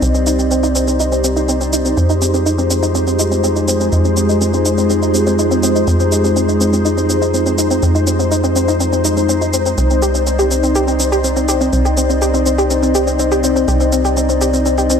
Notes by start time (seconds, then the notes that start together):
Already playing: C4 D#4 G4 C5 D5 D#5
0.02 C2 C4, shaker
0.15 C4, shaker
0.27 D#4, shaker
0.39 C4, shaker
0.51 C4, shaker
0.63 D#4, shaker
0.76 C4, shaker
0.88 C4, shaker
1.00 D#4, shaker
1.12 C4, shaker
1.24 C4, shaker
1.36 D#4, shaker
1.49 C4, shaker
1.61 C4, shaker
1.73 D#4, shaker
1.85 C4, shaker
1.97 F2 C4 F4 G#4, shaker
2.10 G#3 D#4, shaker
2.22 C4, shaker
2.34 C4, shaker
2.46 D#4, shaker
2.58 C4, shaker
2.71 C4, shaker
2.83 D#4, shaker
2.95 C4, shaker
3.07 C4, shaker
3.19 D#4, shaker
3.32 C4, shaker
3.44 C4, shaker
3.56 D#4, shaker
3.68 C4, shaker
3.80 C4, shaker
3.93 F2 D#4, shaker
4.05 C4, shaker
4.17 C4, shaker
4.29 D#4, shaker
4.41 C4, shaker
4.54 C4, shaker
4.66 D#4, shaker
4.78 C4, shaker
4.90 C4, shaker
5.02 D#4, shaker
5.14 C4, shaker
5.27 C4, shaker
5.39 D#4, shaker
5.51 C4, shaker
5.63 C4, shaker
5.76 D#4, shaker
5.88 F2 C4, shaker
6.00 C4, shaker
6.12 D#4, shaker
6.24 C4, shaker
6.36 C4, shaker
6.49 D#4, shaker
6.61 C4, shaker
6.73 C4, shaker
6.85 D#4, shaker
6.98 C4, shaker
7.10 C4, shaker
7.22 D#4, shaker
7.34 C4, shaker
7.46 C4, shaker
7.58 D#4, shaker
7.71 C4, shaker
7.83 F2 C4, shaker
7.95 D#4, shaker
8.07 C4, shaker
8.19 C4, shaker
8.32 D#4, shaker
8.44 C4, shaker
8.56 C4, shaker
8.68 D#4, shaker
8.80 C4, shaker
8.93 C4, shaker
9.05 D#4, shaker
9.17 C4, shaker
9.29 C4, shaker
9.41 D#4, shaker
9.54 C4, shaker
9.66 C4, shaker
9.78 C2 C4 G4 D5 D#5, shaker
9.90 C4, shaker
10.02 G4, shaker
10.15 C4, shaker
10.27 C4, shaker
10.39 G4, shaker
10.51 C4, shaker
10.63 C4, shaker
10.75 G4, shaker
10.88 C4, shaker
11.00 C4, shaker
11.12 G4, shaker
11.24 C4, shaker
11.37 C4, shaker
11.49 G4, shaker
11.61 C4, shaker
11.73 C2 C4, shaker
11.85 G4, shaker
11.97 C4, shaker
12.10 C4, shaker
12.22 G4, shaker
12.34 C4, shaker
12.46 C4, shaker
12.58 G4, shaker
12.71 C4, shaker
12.83 C4, shaker
12.95 G4, shaker
13.07 C4, shaker
13.19 C4, shaker
13.32 G4, shaker
13.44 C4, shaker
13.56 C4, shaker
13.68 C2 G4, shaker
13.80 C4, shaker
13.93 C4, shaker
14.05 G4, shaker
14.17 C4, shaker
14.29 C4, shaker
14.41 G4, shaker
14.54 C4, shaker
14.66 C4, shaker
14.78 G4, shaker
14.90 C4, shaker